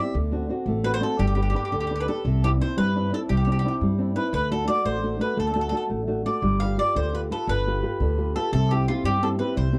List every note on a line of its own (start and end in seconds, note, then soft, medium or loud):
0.00 0.11 C4 soft
0.00 0.11 E4 soft
0.00 0.11 G4 soft
0.00 0.14 E5 medium
0.14 0.48 D2 medium
0.14 0.48 D3 medium
0.32 0.48 C4 soft
0.32 0.49 D4 soft
0.32 0.49 F#4 soft
0.49 0.77 C4 soft
0.49 0.78 D4 soft
0.49 0.78 F#4 medium
0.66 1.00 A1 medium
0.66 1.01 A3 medium
0.83 0.99 C4 soft
0.83 0.99 D4 soft
0.83 1.01 F#4 soft
0.83 0.93 B4 medium
0.94 1.02 C5 medium
1.00 1.15 C4 soft
1.00 1.15 D4 soft
1.00 1.16 F#4 medium
1.00 1.19 A4 medium
1.19 1.54 G1 loud
1.19 1.53 G3 medium
1.19 1.26 G4 medium
1.27 1.34 G4 medium
1.35 1.53 D4 soft
1.35 1.41 G4 soft
1.35 1.53 G4 soft
1.35 1.53 B4 soft
1.43 1.49 G4 medium
1.50 1.55 G4 medium
1.54 1.83 D4 soft
1.54 1.83 G4 soft
1.54 1.64 G4 soft
1.54 1.83 B4 soft
1.65 1.71 G4 medium
1.72 2.07 D2 medium
1.72 2.07 D3 medium
1.72 1.79 G4 soft
1.80 1.86 G4 medium
1.87 2.07 D4 soft
1.87 1.94 G4 soft
1.87 2.08 G4 soft
1.91 2.08 B4 soft
1.96 2.02 G4 medium
2.00 2.08 B4 medium
2.08 2.22 D4 soft
2.08 2.22 G4 soft
2.08 2.44 A4 medium
2.08 2.22 B4 medium
2.25 2.59 C2 medium
2.25 2.60 C3 medium
2.44 2.59 C4 soft
2.44 2.59 D4 soft
2.44 2.60 E4 medium
2.44 2.49 G4 medium
2.60 2.88 C4 soft
2.60 2.89 D4 soft
2.60 2.89 E4 soft
2.60 2.77 C5 medium
2.77 3.12 G2 medium
2.77 3.11 G3 medium
2.77 3.10 B4 medium
2.95 3.11 C4 soft
2.95 3.11 D4 soft
2.95 3.11 E4 soft
3.12 3.40 C4 soft
3.12 3.40 D4 soft
3.12 3.40 E4 medium
3.12 3.19 A4 medium
3.29 3.63 C2 medium
3.29 3.63 G3 medium
3.29 3.36 G4 medium
3.37 3.44 G4 medium
3.45 3.63 C4 soft
3.45 3.64 D4 soft
3.45 3.64 E4 soft
3.45 3.51 G4 soft
3.52 3.58 G4 medium
3.59 3.66 G4 medium
3.64 3.92 C4 soft
3.64 3.92 D4 soft
3.64 3.93 E4 soft
3.64 3.74 G4 soft
3.81 4.15 G2 medium
3.81 4.16 G3 medium
3.98 4.14 C4 soft
3.98 4.15 D4 soft
3.98 4.15 E4 soft
4.16 4.29 C4 soft
4.16 4.30 D4 soft
4.16 4.30 E4 soft
4.16 4.33 B4 medium
4.33 4.67 D2 medium
4.33 4.67 D3 medium
4.33 4.51 B4 medium
4.51 4.66 A3 soft
4.51 4.67 D4 soft
4.51 4.67 F#4 soft
4.51 4.67 A4 medium
4.67 4.83 A3 soft
4.67 4.96 D4 soft
4.67 4.96 F#4 soft
4.67 4.85 D5 medium
4.85 5.19 A1 medium
4.85 5.02 A3 medium
4.85 5.18 C5 medium
5.03 5.18 A3 soft
5.03 5.18 D4 soft
5.03 5.19 F#4 soft
5.19 5.36 A3 soft
5.19 5.48 D4 soft
5.19 5.48 F#4 soft
5.19 5.38 B4 medium
5.37 5.71 D2 medium
5.37 5.54 A3 medium
5.37 5.46 A4 medium
5.47 5.52 A4 soft
5.54 5.70 A3 soft
5.54 5.71 D4 soft
5.54 5.71 F#4 soft
5.54 5.60 A4 soft
5.61 5.67 A4 medium
5.69 5.88 A3 soft
5.69 6.00 D4 soft
5.69 6.01 F#4 soft
5.69 5.75 A4 medium
5.77 5.83 A4 medium
5.89 6.25 A1 medium
5.89 6.06 A3 medium
6.07 6.24 A3 soft
6.07 6.25 D4 soft
6.07 6.25 F#4 soft
6.25 6.39 A3 soft
6.25 6.40 D4 soft
6.25 6.40 F#4 soft
6.25 6.59 D5 medium
6.42 6.77 G1 medium
6.42 6.77 G3 medium
6.60 6.76 F4 soft
6.60 6.76 G4 soft
6.60 6.77 B4 soft
6.60 6.77 F5 medium
6.78 7.06 F4 soft
6.78 7.06 G4 soft
6.78 7.07 B4 soft
6.78 6.95 D5 medium
6.95 7.30 D2 medium
6.95 7.30 D3 medium
6.95 7.13 C5 medium
7.13 7.29 F4 soft
7.13 7.30 G4 soft
7.13 7.30 B4 soft
7.13 7.20 B4 medium
7.30 7.59 F4 soft
7.30 7.59 G4 soft
7.30 7.49 A4 medium
7.30 7.59 B4 medium
7.47 7.82 G1 medium
7.47 7.82 D3 medium
7.47 8.32 B4 medium
7.67 7.82 F4 soft
7.67 7.82 G4 soft
7.67 7.82 B4 soft
7.83 8.11 F4 soft
7.83 8.11 G4 soft
7.83 8.11 B4 soft
8.00 8.34 D2 medium
8.00 8.35 D3 medium
8.18 8.34 F4 soft
8.18 8.35 G4 soft
8.18 8.35 B4 soft
8.35 8.49 F4 medium
8.35 8.50 G4 soft
8.35 8.52 A4 medium
8.35 8.50 B4 medium
8.53 8.86 C2 medium
8.53 8.87 C3 medium
8.53 8.71 A4 medium
8.71 8.88 C4 soft
8.71 8.88 E4 soft
8.71 8.87 G4 medium
8.71 8.89 G4 soft
8.88 9.16 C4 soft
8.88 9.16 E4 soft
8.88 9.05 F4 medium
8.88 9.17 G4 soft
9.04 9.38 G2 medium
9.04 9.39 G3 medium
9.04 9.21 G4 medium
9.22 9.38 C4 soft
9.22 9.39 E4 soft
9.22 9.39 G4 soft
9.22 9.28 A4 medium
9.39 9.67 C4 medium
9.39 9.67 E4 soft
9.39 9.68 G4 medium
9.39 9.55 B4 medium
9.56 9.79 C2 medium
9.56 9.79 G3 medium
9.56 9.79 C5 medium
9.73 9.79 C4 soft
9.73 9.79 E4 soft
9.73 9.79 G4 soft